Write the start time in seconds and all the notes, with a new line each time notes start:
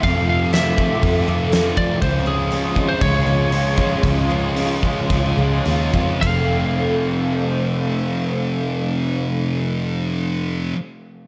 Already playing: A3 C4 F4 A4 E5
0.03 F2 C3 F3 A3 C4 F4 F5 D6, kick, open hi-hat
0.28 C3 F3 F5
0.53 F2 C3 F3 A3 C4 F4 E5, snare, open hi-hat
0.77 C3 F3 A3, kick
1.03 F2 C3 F3 A3 C4 F4, kick, open hi-hat
1.27 F2 C3 F3 A3 C4 F4
1.51 F2 C3 F3 A3 C4 F4, snare, open hi-hat
1.77 C3 E3 F3 D5, kick
2.01 C#2 C#3 F3 G#3 C#4 G#4 C5 C#5 C6, kick, open hi-hat
2.05 F4
2.26 F3 G#3 C#4 G#4
2.51 C#3 F3 G#3 C#4 F4, open hi-hat
2.76 G#3 C#4, kick
2.89 C5
3.01 C#2 C#3 F3 G#3 C#4 F4 C#5, kick, open hi-hat
3.27 C#2 G#3 C#4 F4
3.52 C#3 F3 G#3 C#4 F4, open hi-hat
3.76 F3 G#3 C#4, kick
4.03 C#2 C#3 F3 G#3 C#4 F4, kick, open hi-hat
4.30 F3 G#3 C#4
4.56 C#3 F3 G#3 C#4, open hi-hat
4.60 F4
4.83 G#3 C#4, kick
5.10 C#2 C#3 F3 G#3 C#4, kick, open hi-hat
5.14 F4
5.37 C#2 G#3 C#4 F4
5.65 D#2 C#3 F3 G#3 C#4, open hi-hat
5.70 F4
5.93 F2 F3 G#3 C#4, kick
6.21 F1 F2 C3 A4 C5 F5, kick, ride bell
6.25 F3 A3 C4 F4